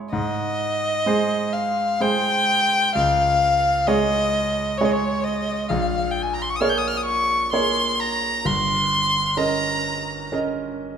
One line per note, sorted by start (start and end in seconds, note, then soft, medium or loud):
0.00 0.14 G#3 soft
0.00 0.14 E4 soft
0.00 0.15 C#5 soft
0.11 1.03 G#2 medium
0.11 1.54 D#5 medium
1.06 1.96 G#3 soft
1.06 1.96 G#4 soft
1.06 1.96 C5 soft
1.53 2.03 F5 medium
2.00 2.90 G#3 soft
2.00 2.91 G#4 soft
2.00 2.91 C5 medium
2.00 2.94 G5 medium
2.95 3.84 C#2 medium
2.95 3.89 F5 medium
3.87 4.75 G#3 soft
3.87 4.75 G#4 soft
3.87 4.75 C#5 soft
3.87 4.79 D#5 medium
4.78 5.66 G#3 soft
4.78 5.66 G#4 soft
4.78 4.86 C#5 medium
4.78 5.66 C#5 soft
4.85 4.93 D#5 medium
4.92 5.25 C#5 medium
5.24 5.71 D#5 medium
5.69 6.57 A#1 medium
5.69 6.12 F5 medium
6.11 6.24 G5 medium
6.23 6.35 G#5 medium
6.34 6.43 A#5 medium
6.42 6.51 C6 medium
6.49 6.57 C#6 medium
6.56 6.63 D#6 medium
6.61 7.48 A#3 soft
6.61 7.48 G#4 soft
6.61 7.48 C#5 soft
6.61 6.71 F6 medium
6.69 6.79 G6 medium
6.78 6.89 D#6 medium
6.88 6.99 F6 medium
6.97 7.05 D#6 medium
7.05 7.50 C#6 medium
7.52 8.40 A#3 soft
7.52 8.40 G#4 soft
7.52 8.41 C#5 soft
7.52 8.01 C6 medium
7.99 8.48 A#5 medium
8.45 9.34 G1 medium
8.45 9.39 C6 medium
9.37 10.28 C#4 soft
9.37 10.28 A#4 soft
9.37 10.28 D#5 soft
9.37 10.32 A#5 medium
10.32 10.98 C#4 soft
10.32 10.98 A#4 soft
10.32 10.98 D#5 soft